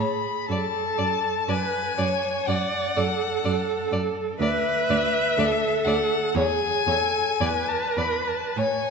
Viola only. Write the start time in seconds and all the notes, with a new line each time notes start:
Already playing: G#4
0.48 A4
1.48 B4
1.98 C#5
2.47 D5
2.96 A4
4.40 B4
5.38 A4
6.35 G#4
6.87 A4
7.41 B4
8.58 C#5